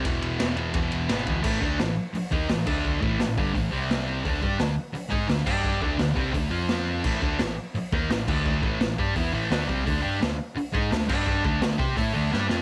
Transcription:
<<
  \new Staff \with { instrumentName = "Distorted electric guitar" } { \clef bass \time 4/4 \key d \lydian \tempo 4 = 171 <e, b, e>4 <e, b, e>8 <e, b, e>8 <e, b, e>4 <e, b, e>8 <e, b, e>8 | <a, e a>8 <d a d'>8 <a, e>8 r4 <dis bes dis'>8 <a, e>8 <d a d'>8~ | <d a d'>8 <a, e a>8 <a, e>8 <g, d g>8 <a, e>8 <c g c'>4. | <d a d'>8 <g d' g'>8 <d a>8 r4 <gis dis' gis'>8 <d a>8 <g d' g'>8~ |
<g d' g'>8 <d a d'>8 <d a>8 <c g c'>8 <d a>8 <f c' f'>4. | <a, e a>8 <d a d'>8 <a, e>8 r4 <dis bes dis'>8 <a, e>8 <d a d'>8~ | <d a d'>8 <a, e a>8 <a, e>8 <g d' g'>8 <e b e'>8 <a, e a>8 <d a d'>8 <c g c'>8 | <d a d'>8 <g d' g'>8 <d a>8 r4 <gis dis' gis'>8 <d a>8 <g d' g'>8~ |
<g d' g'>8 <d a d'>8 <d a>8 <c' g' c''>8 <a e' a'>8 <d a d'>8 <g d' g'>8 <f c' f'>8 | }
  \new Staff \with { instrumentName = "Picked electric bass" } { \clef bass \time 4/4 \key d \lydian e,,8 e,,8 e,,4 e,,8 e,,8 gis,,8 d,8 | a,,8 d,8 a,,8 r4 dis,8 a,,8 d,8~ | d,8 a,,8 a,,8 g,,8 a,,8 c,4. | d,8 g,8 d,8 r4 gis,8 d,8 g,8~ |
g,8 d,8 d,8 c,8 d,8 f,4. | a,,8 d,8 a,,8 r4 dis,8 a,,8 d,8~ | d,8 a,,8 a,,8 g,8 e,8 a,,8 d,8 c,8 | d,8 g,8 d,8 r4 gis,8 d,8 g,8~ |
g,8 d,8 d,8 c8 a,8 d,8 g,8 f,8 | }
  \new DrumStaff \with { instrumentName = "Drums" } \drummode { \time 4/4 <bd cymr>8 cymr8 <cymr sn>8 cymr8 <bd cymr>8 cymr8 <cymr sn>8 <bd cymr>8 | <cymc bd>8 bd8 <hho sn>4 hho8 bd8 <hho sn>8 <cymc bd>8 | bd8 bd8 <hho sn>8 bd8 <hho bd>4 <hho sn>4 | <hho bd>8 bd8 <hho sn>4 hho8 bd8 <hho sn>8 <cymc bd>8 |
bd8 bd8 <hho sn>8 bd8 <hho bd>4 <hho sn>4 | <cymc bd>8 bd8 <hho sn>4 hho8 bd8 <hho sn>8 <cymc bd>8 | bd8 bd8 <hho sn>8 bd8 <hho bd>4 <hho sn>8 bd8 | <hho bd>4 <hho sn>4 hho8 bd8 <hho sn>8 <cymc bd>8 |
bd8 bd8 <hho sn>8 bd8 <hho bd>4 sn8 sn8 | }
>>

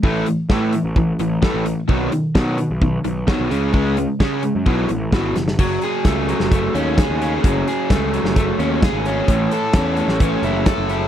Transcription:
<<
  \new Staff \with { instrumentName = "Overdriven electric guitar" } { \clef bass \time 4/4 \key fis \dorian \tempo 4 = 130 <a, e a>8 <a, e>8 <a, e a>8 <a, e>8 <a, e>8 <a, e>8 <a, e a>8 <a, e>8 | <b, dis fis>8 <b, dis>8 <b, dis fis>8 <b, dis>8 <b, dis>8 <b, dis>8 <b, dis fis>8 <cis gis cis'>8 | <cis gis cis'>8 <cis gis>8 <cis gis cis'>8 <cis gis>8 <b, e fis>8 <b, e>8 <b, e fis>8 <b, e>8 | fis8 gis'8 a8 fis8 a8 cis'8 gis'8 cis'8 |
fis8 gis'8 a8 fis8 a8 cis'8 gis'8 cis'8 | a,8 a'8 cis'8 a8 cis'8 e'8 a'8 e'8 | }
  \new Staff \with { instrumentName = "Picked electric bass" } { \clef bass \time 4/4 \key fis \dorian a,,8 r8 a,8. a,,8. a,,8 r16 a,,8 r16 | b,,8 r8 b,8. b,,8. b,,8 r16 b,,16 cis,8~ | cis,4 cis8. fis,16 b,,8 a,,8 gis,,8 fis,,8 | fis,,8 r8 cis,8. fis,,8. dis,8. dis,8. |
fis,,8 r8 cis,8. fis,,8. dis,8. gis,,8. | a,,8 r8 e,8. a,,8. fis,,8. fis,,8. | }
  \new DrumStaff \with { instrumentName = "Drums" } \drummode { \time 4/4 bd8 hh8 <bd sn>8 hh8 bd8 hh8 <bd sn>8 hh8 | bd8 hh8 <bd sn>8 hh8 bd8 hh8 <bd sn>8 hh8 | bd8 hh8 <bd sn>8 hh8 bd8 hh8 <bd sn>8 <hh sn>16 sn16 | <cymc bd>8 hh8 <hh bd sn>8 hh16 sn16 <hh bd>8 hh8 <hh bd sn>8 <hh sn>8 |
<hh bd>8 hh8 <hh bd sn>8 hh16 sn16 <hh bd>8 hh8 <hh bd sn>8 hh8 | <hh bd>8 hh8 <hh bd sn>8 hh16 sn16 <hh bd>8 hh8 <hh bd sn>8 <hh sn>8 | }
>>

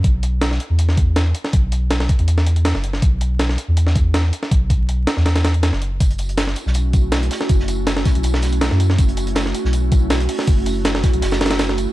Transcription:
<<
  \new Staff \with { instrumentName = "Sub bass" } { \clef bass \time 4/4 \key fis \minor \tempo 4 = 161 b,,4. r16 e,4.~ e,16 r8 | b,,4. r16 e,4. fis,,8. | b,,4. r16 e,4.~ e,16 r8 | b,,4. r16 e,4. fis,,8. |
fis,,4. r16 b,,4.~ b,,16 r8 | fis,,4. r16 b,,4. fis,8. | fis,,4. r16 b,,4.~ b,,16 r8 | fis,,4. r16 b,,16 fis,,4.~ fis,,16 r16 | }
  \new DrumStaff \with { instrumentName = "Drums" } \drummode { \time 4/4 <hh bd>8 hh8 <hh sn>16 sn16 hh8 hh16 sn16 <hh bd>8 <hh sn>8 hh16 sn16 | <hh bd>8 hh8 <hh sn>16 sn16 <hh bd>16 hh16 hh16 sn16 hh16 hh16 <hh sn>16 sn16 hh16 sn16 | <hh bd>8 hh8 <hh sn>16 sn16 hh8 hh16 sn16 <hh bd>8 <hh sn>8 hh16 sn16 | <hh bd>8 <hh bd>8 hh8 <hh sn>16 sn16 <hh sn>16 <hh sn>16 <hh sn>16 hh16 <hh sn>16 sn16 hh8 |
<hh bd tamb>16 hh16 <hh tamb>16 hh16 <hh sn tamb>16 sn16 <hh tamb>16 sn16 <hh tamb>8 <hh bd tamb>8 <hh sn tamb>16 hh16 <hh sn tamb>16 sn16 | <hh bd tamb>16 sn16 <hh tamb>8 <hh sn tamb>16 sn16 <hh bd sn tamb>16 hh16 <hh tamb>16 sn16 <hh sn tamb>16 hh16 <hh sn tamb>16 sn16 <hh tamb>16 sn16 | <hh bd tamb>16 hh16 <hh tamb>16 hh16 <hh sn tamb>16 sn16 <hh tamb>16 sn16 <hh tamb>8 <hh bd tamb>8 <hh sn tamb>16 hh16 <hh hho>16 sn16 | <hh bd tamb>8 <hh tamb>8 <hh sn tamb>16 sn16 <hh bd sn tamb>16 hh16 <hh sn tamb>16 <sn tamb>16 <hh sn tamb>32 <hh sn>32 <hh sn tamb>16 <hh sn tamb>16 sn16 <hh tamb>8 | }
>>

